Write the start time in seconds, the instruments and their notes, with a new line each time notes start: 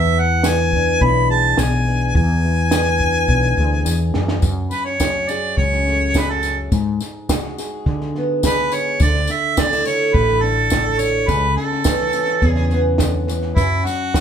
Already playing: fretless electric bass E2, steel-string acoustic guitar E2 E3 E4 G#4, harmonica E5
0.18 steel-string acoustic guitar E4, harmonica F#5
0.43 steel-string acoustic guitar E3, harmonica G#5, snare, tambourine
0.73 steel-string acoustic guitar D4, kick
1.01 fretless electric bass B1, steel-string acoustic guitar E4, harmonica B5, kick
1.30 steel-string acoustic guitar G#4, harmonica A5
1.57 fretless electric bass B1, steel-string acoustic guitar E4, harmonica G#5, snare, tambourine
1.88 steel-string acoustic guitar D4
2.15 steel-string acoustic guitar E2, fretless electric bass E2, harmonica G#5, kick
2.45 steel-string acoustic guitar E4
2.71 steel-string acoustic guitar E3, snare, tambourine
2.99 steel-string acoustic guitar D4, kick
3.28 fretless electric bass B1, steel-string acoustic guitar E4, kick
3.57 fretless electric bass D2, steel-string acoustic guitar G#4
3.85 fretless electric bass E2, snare, tambourine
4.14 steel-string acoustic guitar E2, fretless electric bass F#2, snare
4.28 snare
4.42 fretless electric bass F#2, steel-string acoustic guitar F#2, kick, snare, tambourine
4.70 harmonica B4, snare, tambourine
4.85 harmonica C#5, snare
5.00 steel-string acoustic guitar F#3 C#4, kick, snare, tambourine
5.28 steel-string acoustic guitar G#4, harmonica D5, snare, tambourine
5.57 fretless electric bass C#2, steel-string acoustic guitar C#3, harmonica C#5, kick, snare
5.72 snare
5.87 steel-string acoustic guitar A3, snare
6.14 steel-string acoustic guitar F#3 G#4, harmonica B4, kick, snare, tambourine
6.30 harmonica A4, snare
6.43 snare, tambourine
6.72 fretless electric bass G#2, steel-string acoustic guitar G#2, kick, snare, tambourine
7.00 snare, tambourine
7.29 steel-string acoustic guitar G#3 F#4, kick, snare, tambourine
7.44 snare
7.58 steel-string acoustic guitar G#4, snare, tambourine
7.86 fretless electric bass D3, steel-string acoustic guitar D3, kick, snare
8.01 snare
8.15 steel-string acoustic guitar B3, snare
8.43 steel-string acoustic guitar G#3 G#4, harmonica B4, kick, snare, tambourine
8.72 harmonica C#5, snare, tambourine
9.00 fretless electric bass D2, steel-string acoustic guitar D3, harmonica D5, kick, snare, tambourine
9.15 snare
9.27 harmonica E5, snare, tambourine
9.57 steel-string acoustic guitar A3 C#4, harmonica D5, kick, snare, tambourine
9.72 steel-string acoustic guitar E4, snare
9.85 steel-string acoustic guitar A4, harmonica C#5, snare, tambourine
10.14 fretless electric bass A1, steel-string acoustic guitar A2, harmonica B4, kick, snare
10.28 snare
10.41 steel-string acoustic guitar D4, harmonica A4, snare
10.70 steel-string acoustic guitar A3 E4, kick, snare, tambourine
10.99 harmonica C#5, snare, tambourine
11.28 fretless electric bass C#2, steel-string acoustic guitar C#3, harmonica B4, kick, snare, tambourine
11.56 harmonica A4, snare
11.72 snare
11.84 steel-string acoustic guitar E3 C#4, kick, snare, tambourine
11.99 snare
12.13 steel-string acoustic guitar C#4, snare, tambourine
12.27 snare
12.41 fretless electric bass E2, steel-string acoustic guitar C#3, kick, snare, tambourine
12.46 harmonica G#4
12.56 snare
12.70 steel-string acoustic guitar B3, snare, tambourine
12.98 steel-string acoustic guitar D3, kick, snare, tambourine
13.27 steel-string acoustic guitar E3, snare, tambourine
13.42 snare
13.55 fretless electric bass F#2, steel-string acoustic guitar F#2, harmonica E4, kick, snare, tambourine
13.85 harmonica F#4, snare, tambourine
14.14 steel-string acoustic guitar F#3 C#4, kick, snare, tambourine